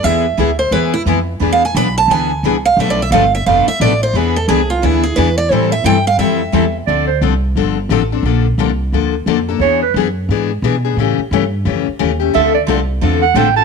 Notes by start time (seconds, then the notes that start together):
0.03 E2 E3 G#3 B3 E4 G#4 E5
0.38 D2 E3 G#3 B3 E4 G#4
0.59 C5
0.71 E2 E3 G#3 B3 E4 G#4 B4
0.94 E4
1.06 F2 E3 G#3 B3 E4 G#4
1.40 E2 E3 B3 D4 G#4 B4
1.53 F5
1.65 G#5
1.75 B1 E3 B3 D4 G#4 B4 B5
1.98 A5
2.08 D2 E3 B3 D4 G#4 B4 G#5
2.43 C2 E3 B3 D4 G#4 B4
2.65 F5
2.77 B1 B2 F3 A3 A4 B4 E5
2.81 D4
2.90 D5
3.02 E5
3.11 G1 B2 F3 A3 D4 A4 B4 F5
3.35 E5
3.46 F1 B2 F3 A3 D4 A4 B4 F5
3.67 E5, muted upright bass stroke
3.80 A1 B2 F3 A3 D4 A4 B4 D5
4.03 C5
4.13 E2 E3 B3 D4 G#4 B4
4.36 A4
4.48 C2 E3 B3 D4 G#4 B4
4.70 F4
4.83 D2 E3 B3 D4 E4 G#4 B4
5.04 G#4
5.16 E2 E3 B3 D4 G#4 B4
5.38 D5
5.50 A2 E3 G3 C4 E4 A4 C5
5.72 E5
5.84 G2 E3 G3 C4 E4 A4 G5
6.07 F5
6.18 F2 E3 G3 C4 E4 A4 E5
6.53 E2 E3 G3 C4 E4 A4
6.87 D2 D3 F3 C4 D4 A4 D5
7.07 C5
7.21 C2 D3 F3 C4 D4 A4
7.56 G1 D3 F3 C4 D4 A4
7.89 A1 D3 F3 C4 D4 A4
8.12 C4 D4 A4
8.23 A#1 D3 F3 A#3 D4 A4
8.58 C2 D3 F3 A#3 D4 A4
8.93 D2 D3 F3 A#3 D4 A4
9.26 F2 D3 F3 A#3 D4 A4
9.49 A#3 D4 A4
9.59 E2 E3 B3 D4 G#4 C#5
9.82 B4
9.94 F#2 E3 B3 D4 G#4
10.29 G#2 E3 B3 D4 G#4
10.62 B2 E3 B3 D4 G#4
10.85 B3 D4 G#4
10.97 A2 C#3 E3 A3 C#4 G4
11.18 muted upright bass stroke
11.31 G2 C#3 E3 A3 C#4 G4
11.65 F2 C#3 E3 A3 C#4 G4
11.88 muted upright bass stroke
11.99 D#2 C#3 E3 A3 C#4 G4
12.20 A3 C#4 G4
12.34 D2 D3 F3 A3 C4 D4 F4 A4 E5
12.55 D5
12.67 C2 D3 F3 A3 C4 D4 F4 A4
13.01 E2 D3 F3 A3 C4 D4 F4 A4
13.22 F#5
13.34 A1 D3 F3 A3 C4 D4 F4 A4 G5
13.56 C4 F4 A4 A5